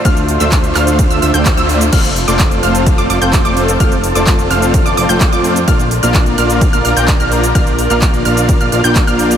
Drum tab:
CC |----------------|x---------------|----------------|----------------|
RD |x---x---x---x---|x---x---x---x---|x---x---x---x---|x---x---x---x---|
HH |xxoxxxoxxxoxxxox|xxoxxxoxxxoxxxox|xxoxxxoxxxoxxxox|xxoxxxoxxxoxxxox|
SH |xx-xxx-xxx-xxx-x|xx-xxx-xxx-xxx-x|xx-xxx-xxx-xxx-x|xx-xxx-xxx-xxx-x|
CP |----x-x-----x---|----x-------x---|----x-------x---|----x-------x---|
BD |o---o---o---o---|o---o---o---o---|o---o---o---o---|o---o---o---o---|

CC |----------------|
RD |x---x---x---x---|
HH |xxoxxxoxxxoxxxox|
SH |xx-xxx-xxx-xxx-x|
CP |----x-------x---|
BD |o---o---o---o---|